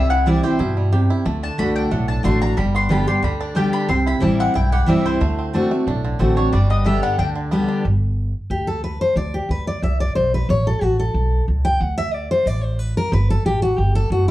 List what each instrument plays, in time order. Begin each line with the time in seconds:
Already playing: upright bass C2, steel-string acoustic guitar C3, five-string banjo G3
0.10 five-string banjo E4, mandolin F#5
0.26 steel-string acoustic guitar E3 G3 C4 E4, five-string banjo G3, mandolin D5
0.43 steel-string acoustic guitar C4 E4, five-string banjo G4, mandolin C5
0.59 upright bass G2, steel-string acoustic guitar B2, five-string banjo E4
0.77 five-string banjo G3
0.92 steel-string acoustic guitar C3, five-string banjo G4
1.10 five-string banjo E4
1.25 upright bass D2, steel-string acoustic guitar D3, five-string banjo A3
1.43 five-string banjo D4, mandolin A5
1.58 upright bass C2, steel-string acoustic guitar D3 A3 D4 F#4, five-string banjo D4, mandolin B5
1.76 five-string banjo D4, mandolin G5
1.91 upright bass B1, steel-string acoustic guitar A2, five-string banjo A3, mandolin F#5
2.08 five-string banjo D4, mandolin A5
2.23 upright bass A1, steel-string acoustic guitar D3 A3 D4 F#4, five-string banjo D4, mandolin C6
2.41 five-string banjo D4, steel-string acoustic guitar D4 F#4, mandolin A#5
2.57 upright bass G1, steel-string acoustic guitar G2, five-string banjo G3, mandolin B5
2.75 five-string banjo B3, mandolin C6
2.89 steel-string acoustic guitar D3 G3 B3 G4, five-string banjo D4, mandolin B5
3.07 steel-string acoustic guitar B3 G4, five-string banjo G4, mandolin C6
3.23 upright bass D2, steel-string acoustic guitar D3, five-string banjo G3, mandolin B5
3.41 five-string banjo D4, mandolin D5
3.55 steel-string acoustic guitar D3 G3 B3 G4, five-string banjo G4, mandolin G5
3.73 five-string banjo D4, mandolin B5
3.89 upright bass C2, steel-string acoustic guitar C3, five-string banjo C4, mandolin C6
4.06 five-string banjo E4, mandolin B5
4.20 upright bass A1, steel-string acoustic guitar E3 G3 C4 E4, five-string banjo G3, mandolin A5
4.40 five-string banjo C4, mandolin F#5
4.54 upright bass B1, steel-string acoustic guitar G2, five-string banjo E4, mandolin G5
4.72 five-string banjo G4, mandolin F#5
4.86 upright bass C2, steel-string acoustic guitar E3 G3 C4 E4, five-string banjo G3, mandolin E5
5.05 five-string banjo E4, mandolin C5
5.21 upright bass D2, steel-string acoustic guitar D3, five-string banjo A3
5.39 five-string banjo C4
5.53 steel-string acoustic guitar D3 A3 C4 F#4, five-string banjo D4
5.71 five-string banjo A3, steel-string acoustic guitar C4 F#4
5.87 upright bass B1, steel-string acoustic guitar A2, five-string banjo D4
6.05 five-string banjo D3
6.19 upright bass A1, steel-string acoustic guitar D3 A3 C4 F#4, five-string banjo C4
6.36 steel-string acoustic guitar C4 F#4, five-string banjo D4, mandolin C#5
6.53 upright bass G1, steel-string acoustic guitar G2, five-string banjo G3, mandolin D5
6.70 five-string banjo B3, mandolin D#5
6.84 steel-string acoustic guitar D3 G3 B3 G4, five-string banjo D4, mandolin E5
7.03 five-string banjo G3, mandolin F#5
7.18 upright bass D2, steel-string acoustic guitar D3, five-string banjo D4, mandolin G5
7.35 five-string banjo D3
7.51 steel-string acoustic guitar D3 G3 B3 G4, five-string banjo B3
7.68 five-string banjo D4
7.85 upright bass G1
8.50 upright bass D2, steel-string acoustic guitar G4
8.67 steel-string acoustic guitar A4
8.84 steel-string acoustic guitar B4
9.01 steel-string acoustic guitar C5
9.16 upright bass D2, steel-string acoustic guitar D5
9.34 steel-string acoustic guitar G4
9.49 upright bass D2, steel-string acoustic guitar B4
9.67 steel-string acoustic guitar D5
9.82 upright bass C2, steel-string acoustic guitar E5
10.00 steel-string acoustic guitar D5
10.15 upright bass B1, steel-string acoustic guitar C5
10.34 steel-string acoustic guitar B4
10.49 upright bass A1, steel-string acoustic guitar C#5
10.67 steel-string acoustic guitar A4
10.81 upright bass A1, steel-string acoustic guitar F#4
11.00 steel-string acoustic guitar A4
11.14 upright bass B1
11.48 upright bass C#2
11.65 steel-string acoustic guitar G5
11.81 upright bass D2, steel-string acoustic guitar F#5
11.98 steel-string acoustic guitar E5
12.14 steel-string acoustic guitar D5
12.31 steel-string acoustic guitar C5
12.46 upright bass A1, steel-string acoustic guitar D5
12.64 steel-string acoustic guitar C5
12.79 steel-string acoustic guitar B4
12.97 steel-string acoustic guitar A#4
13.12 upright bass G1, steel-string acoustic guitar B4
13.30 steel-string acoustic guitar A4
13.45 upright bass A1, steel-string acoustic guitar G4
13.62 steel-string acoustic guitar F#4
13.77 upright bass G1, steel-string acoustic guitar G4
13.95 steel-string acoustic guitar A4
14.10 upright bass F#1, steel-string acoustic guitar F#4